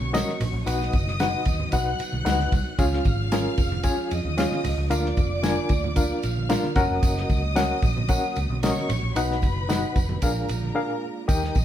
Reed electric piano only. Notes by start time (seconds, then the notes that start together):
0.13 C#4 F#4 A#4 D#5
0.66 B2 D#4 F#4 B4 F#5
1.20 D#4 F#4 B4 F#5
1.72 D#4 F#4 B4 F#5
2.25 D#4 F#4 B4 F#5
2.79 C#3 C#4 F4 G#4 F5
3.32 C#4 F4 G#4 A#4
3.84 C#4 F4 G#4 G#5
4.38 C#4 F4 G#4 F5
4.90 D3 D4 F4 A#4 F5
5.43 D4 F4 A#4 G#5
5.96 D4 F4 A#4 F5
6.49 D4 F4 A#4 F5
6.76 C#4 F#4 A#4 F#5
7.56 C#4 F#4 A#4 F#5
8.09 C#4 F#4 A#4 F#5
8.63 C#4 F#4 A#4 D#5
9.16 B2 D#4 F#4 B4 F#5
9.69 D#4 F#4 B4 F#5
10.22 A#2 D4 G#4 A#4 F5
10.75 D4 G#4 A#4 F5
11.28 D#3 D#4 G4 A#4 G5